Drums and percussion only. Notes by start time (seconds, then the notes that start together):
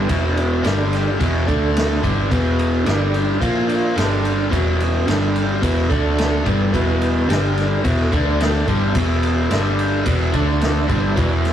0.09 kick, ride
0.37 ride
0.64 snare, ride
0.93 snare, ride
1.20 kick, ride
1.48 kick, ride
1.76 snare, ride
2.04 kick, ride
2.31 kick, ride
2.59 ride
2.86 snare, ride
3.14 ride
3.42 kick, ride
3.69 ride
3.97 snare, ride
4.25 ride
4.52 kick, ride
4.80 ride
5.08 snare, ride
5.36 ride
5.63 kick, ride
5.91 kick, ride
6.18 snare, ride
6.46 kick, ride
6.74 kick, ride
7.01 ride
7.30 snare, ride
7.57 snare, ride
7.84 kick, ride
8.13 kick, ride
8.40 snare, ride
8.68 kick, ride
8.95 kick, ride
9.23 ride
9.51 snare, ride
9.79 ride
10.06 kick, ride
10.33 kick, ride
10.61 snare, ride
10.89 kick, ride
11.17 kick, ride
11.45 snare, ride